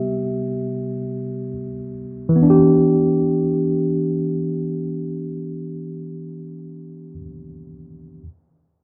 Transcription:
tine electric piano
Already playing: C3 G3 B3 G4 E5
2.29 E3
2.36 B3
2.43 D4
2.50 G4

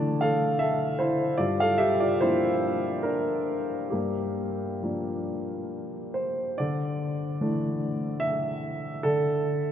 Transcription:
upright piano
Already playing: D3 E3 A3 D4 D5 A5
0.21 A4 F5
0.59 A4 E5
0.99 E4 C5
1.38 G2 F4 D5
1.60 A4 F5
1.78 G4 E5
2.00 F4 D5
2.21 F3 A#3 D4 E4 C5
3.03 D4 A#4
3.90 G2 A#3 G4
4.83 F3 A#3 D4
6.14 C5
6.58 D3 D5
7.41 E3 A3 D4
8.20 E5
9.03 D3 A4

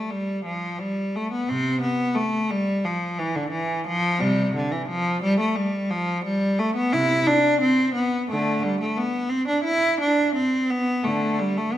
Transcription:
cello
Already playing: A3
0.10 G3
0.45 F3
0.79 G3
1.16 A3
1.32 B3
1.49 C3 C4
1.81 B3
2.15 A3
2.51 G3
2.84 F3
3.19 E3
3.35 D3
3.51 E3
3.87 F3
4.20 C3 G3
4.56 D3
4.72 E3
4.89 F3
5.23 G3
5.40 A3
5.55 G3
5.90 F3
6.25 G3
6.59 A3
6.76 B3
6.92 C3 E4
7.26 D4
7.61 C4
7.94 B3
8.30 D3 A3
8.63 G3
8.81 A3
8.97 B3
9.30 C4
9.48 D4
9.64 E4
10.01 D4
10.35 C4
10.70 B3
11.04 D3 A3
11.39 G3
11.57 A3
11.73 B3

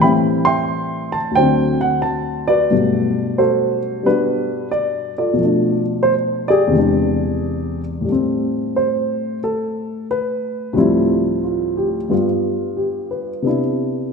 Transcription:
grand piano
0.00 A2 E3 G3 E5 G5 B5
0.04 C4
0.45 E5 G5 C6
1.12 A5
1.31 D2 D3
1.35 F#3 C5 G5
1.42 C4
1.81 F#5
2.02 A5
2.48 F#4 B4 D5
2.71 G2 B2 F#3 A3
3.38 F#4 A4 C5
4.03 G3 B3 D4 F#4 B4
4.71 D5
5.18 F4 A4 D5
5.33 B2 F3
5.41 A3 D4
6.03 C5
6.48 G4 G#4 D5
6.67 E2 C3
6.73 E3 G#3
6.78 D4
8.01 A2 G3
8.09 A3 C4
8.76 C5
9.44 A4
10.11 B4
10.73 D2 A2 F3 G3
10.77 C4 E4
11.44 F4
11.77 G4
12.10 G2 G3 B3 F4
12.77 G4
13.11 B4
13.42 C3 B3 D4
13.47 E4

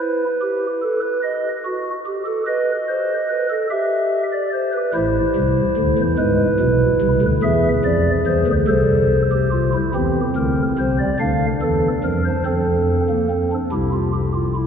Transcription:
pipe organ
0.00 E4 B4
0.41 G4
0.82 A4
1.02 B4
1.23 D#5
1.65 F#4
2.06 G4
2.26 A4
2.47 B4 D#5
2.89 C5
3.29 B4
3.50 A4
3.71 G4 E5
4.32 D5
4.53 C5
4.73 B4
4.94 A1 A2 E4 C5
5.36 C2 C3
5.77 D2 D3
5.98 E2 E3
6.19 G#2 G#3 B4
6.60 B1 B2
7.02 C2 C3
7.22 D2 D3
7.43 E2 E3 G#4 E5
7.85 F2 F3 D5
8.26 E2 E3 C5
8.47 D2 D3
8.68 C2 C3 A4 C5
9.32 G4
9.52 F4
9.74 E4
9.95 E2 E3 C4 G4
10.36 D2 D3 A#4
10.79 C2 C3 C5
10.99 D5
11.20 D2 D3 D4 F5
11.62 E2 E3 A4
12.04 F2 F3 A#4
12.25 C5
12.46 F2 F3 C4 A4
13.09 A#3
13.30 C4
13.52 D4
13.72 C2 C3 E4 G4
13.93 F4
14.14 G4
14.35 F4
14.56 E4

